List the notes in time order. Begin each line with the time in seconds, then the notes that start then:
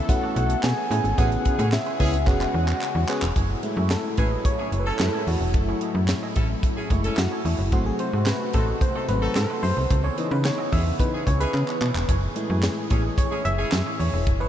Already playing: E3 B3 A4 E5
0.09 A3 C#4 E4 F#4 F#5, muted clean electric guitar stroke, kick, closed hi-hat
0.23 A3 E4 F#4 C#5
0.36 B1 A3 E4 F#4 C#5 F#5, closed hi-hat
0.50 muted clean electric guitar stroke, closed hi-hat
0.63 B2 G#5, snare, clap
0.78 muted clean electric guitar stroke
0.90 A2 A3 C#4 E4 F#4 G#4 B4, closed hi-hat
1.04 G#1, muted clean electric guitar stroke, closed hi-hat
1.18 A1 C#3 G#3 B3 C#4 E4 G#4 B4 F#5, kick, closed hi-hat
1.32 muted clean electric guitar stroke, closed hi-hat
1.45 muted clean electric guitar stroke, kick, closed hi-hat
1.59 A2 G#3 C#4 E4 G#4 B4, closed hi-hat
1.72 E5, muted clean electric guitar stroke, snare, clap
1.86 G#3 C#4 E4 B4, closed hi-hat
1.99 C#2 B3 C#4 E4 G#4, muted clean electric guitar stroke, kick, open hi-hat
2.13 muted clean electric guitar stroke, closed hi-hat
2.26 E1 G#3 B3 C#4 F#4 G#4 F#5, muted clean electric guitar stroke, kick, clap
2.41 G#3 C#4 F#4 B4, clap
2.54 E2, muted clean electric guitar stroke
2.68 muted clean electric guitar stroke, clap
2.81 muted clean electric guitar stroke, clap
2.95 E2, muted clean electric guitar stroke
3.08 G#3 B3 C#4 F#4 G#4 B4, clap
3.22 E1, muted clean electric guitar stroke, clap
3.36 F#1 A2 F#3 A3 E4 G#4 C#5, kick, closed hi-hat
3.50 muted clean electric guitar stroke
3.63 G#3 A3 E4, muted clean electric guitar stroke, closed hi-hat
3.77 F#2 A3 E4 G#4 C#5
3.90 A4, muted clean electric guitar stroke, snare, clap, closed hi-hat
4.04 muted clean electric guitar stroke
4.17 A1 A3 C#4 E4 G#4 B4 C#5, kick, closed hi-hat
4.31 A3 E4 G#4 D#5
4.45 C#5, muted clean electric guitar stroke, kick, closed hi-hat
4.59 A3 C#4 E4 G#4 C#5
4.72 F#1 A3 E4 G#4 C#5, closed hi-hat
4.79 B4
4.86 C#4 E4 A4, muted clean electric guitar stroke
4.99 F#2 G#3 A3 E4, muted clean electric guitar stroke, snare, clap, closed hi-hat
5.13 A3 E4 G#4 C#5
5.27 E2 F#4, muted clean electric guitar stroke, open hi-hat
5.40 E1, muted clean electric guitar stroke
5.54 F#1 F#3 A3 E4, muted clean electric guitar stroke, kick, closed hi-hat
5.68 A3 E4 G#4 C#5
5.81 A3 E4 G#4 D#5, closed hi-hat
5.95 F#2, muted clean electric guitar stroke
6.08 muted clean electric guitar stroke, snare, clap, closed hi-hat
6.22 A3 E4 G#4 D#5
6.36 A1 C#4 E4 A4, muted clean electric guitar stroke, kick, closed hi-hat
6.50 muted clean electric guitar stroke
6.63 kick, closed hi-hat
6.77 C#4 E4 G#4, muted clean electric guitar stroke
6.90 F#1 G#3 A3 E4 G#4 C#5, kick, closed hi-hat
7.04 C#4 E4 A4, muted clean electric guitar stroke, closed hi-hat
7.17 F#2 F#4, muted clean electric guitar stroke, snare, clap, closed hi-hat
7.31 A3 E4 G#4 C#5
7.45 E2 A3 E4 G#4 C#5, open hi-hat
7.58 F#1, muted clean electric guitar stroke
7.72 G#1 C3 F#3 A3 C4 D#4 F#4 C5, kick, closed hi-hat
7.85 G#4, muted clean electric guitar stroke
7.99 C5, muted clean electric guitar stroke, closed hi-hat
8.13 G#2 A3 D#4 F#4 C5
8.26 B4, muted clean electric guitar stroke, snare, clap, closed hi-hat
8.40 muted clean electric guitar stroke
8.53 A1 A3 D#4 F#4 A4 C5, kick, closed hi-hat
8.68 A3 D#4 F#4 D#5
8.81 C5, muted clean electric guitar stroke, kick, closed hi-hat
8.95 A3 D#4 F#4 A4 C5
9.08 G#1 F#3 A3 C4 D#4 F#4 B4 C5, closed hi-hat
9.22 D#4 F#4 A4, muted clean electric guitar stroke
9.35 G#2 A4, muted clean electric guitar stroke, snare, clap, closed hi-hat
9.49 A3 D#4 F#4 C5
9.63 F#2 C5, muted clean electric guitar stroke, open hi-hat
9.76 C2, muted clean electric guitar stroke
9.90 C#2 C#3 E3 B3, muted clean electric guitar stroke, kick, closed hi-hat
10.04 B3 E4 G#4 C#5
10.17 E3 B3 D#4 E4 G#4 D#5, closed hi-hat
10.31 C#3 B4, muted clean electric guitar stroke
10.44 C#5, muted clean electric guitar stroke, snare, clap, closed hi-hat
10.58 B3 E4 G#4 D#5
10.72 E2 C#4 E4 G#4 E5, muted clean electric guitar stroke, kick, open hi-hat
10.85 muted clean electric guitar stroke
11.00 E3 B3 D#4 B4, kick, closed hi-hat
11.13 C#4 E4 G#4, muted clean electric guitar stroke
11.26 C#2 B3 E4 G#4 C#5, kick, closed hi-hat
11.40 C#4 E4 G#4 B4, muted clean electric guitar stroke, closed hi-hat
11.54 C#3, muted clean electric guitar stroke, clap
11.67 B3 E4 G#4 C#5, clap
11.81 B2 B3 E4 G#4 C#5, clap
11.95 E1, muted clean electric guitar stroke, clap
12.08 F#1 A2 A3 E4 G#4 C#5, kick, closed hi-hat
12.22 muted clean electric guitar stroke
12.36 G#3 A3 E4, muted clean electric guitar stroke, closed hi-hat
12.50 F#2 A3 E4 G#4 C#5
12.63 muted clean electric guitar stroke, snare, clap, closed hi-hat
12.77 muted clean electric guitar stroke
12.90 A1 A3 C#4 E4 G#4 C#5, kick, closed hi-hat
13.04 A3 E4 G#4 D#5
13.18 C#5, muted clean electric guitar stroke, kick, closed hi-hat
13.31 A3 C#4 E4 G#4 C#5
13.45 F#1 A3 E4 G#4 C#5 E5, closed hi-hat
13.58 C#4 E4 G#4, muted clean electric guitar stroke
13.72 F#2, muted clean electric guitar stroke, snare, clap, closed hi-hat
13.86 A3 E4 G#4 C#5
13.99 E2 C#5, muted clean electric guitar stroke, open hi-hat
14.13 E1, muted clean electric guitar stroke
14.27 F#1 F#3, muted clean electric guitar stroke, kick, closed hi-hat
14.40 A3 E4 G#4 B4 C#5